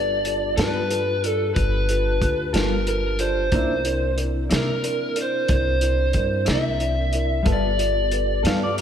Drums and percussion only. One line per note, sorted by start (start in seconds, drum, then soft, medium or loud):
0.25 closed hi-hat soft
0.58 snare medium
0.58 closed hi-hat medium
0.91 closed hi-hat medium
1.24 closed hi-hat soft
1.56 kick medium
1.56 closed hi-hat medium
1.89 closed hi-hat soft
2.22 kick medium
2.22 closed hi-hat medium
2.54 snare medium
2.54 closed hi-hat medium
2.87 closed hi-hat soft
3.19 closed hi-hat medium
3.52 kick medium
3.52 closed hi-hat medium
3.85 closed hi-hat medium
4.18 closed hi-hat soft
4.51 snare medium
4.51 closed hi-hat medium
4.84 closed hi-hat medium
5.16 closed hi-hat medium
5.48 kick medium
5.48 closed hi-hat medium
5.81 closed hi-hat medium
6.13 kick medium
6.13 closed hi-hat soft
6.46 snare medium
6.46 closed hi-hat medium
6.80 closed hi-hat soft
7.13 closed hi-hat soft
7.46 kick medium
7.46 closed hi-hat medium
7.79 closed hi-hat medium
8.12 closed hi-hat soft
8.45 snare medium
8.45 closed hi-hat medium
8.78 closed hi-hat medium